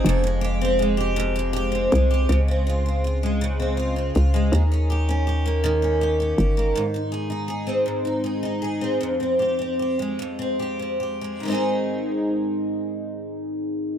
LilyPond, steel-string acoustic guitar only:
\new Staff \with { instrumentName = "Steel-string acoustic guitar" } { \time 6/8 \key aes \major \tempo 4. = 53 f,16 aes16 g'16 c'16 aes16 g'16 f,16 aes16 g'16 c'16 aes16 g'16 | des16 c'16 f'16 c'16 f'16 aes16 des16 c'16 f'16 c'16 f'16 aes16 | ees16 des'16 g'16 des'16 g'16 bes16 ees16 des'16 g'16 des'16 g'16 bes16 | aes,16 ees'16 aes'16 ees'16 aes'16 c'16 aes,16 ees'16 aes'16 ees'16 aes'16 c'16 |
f,16 c'16 g'16 c'16 g'16 aes16 f,16 c'16 g'16 c'16 g'16 aes16 | <aes, ees aes c' ees' aes'>2. | }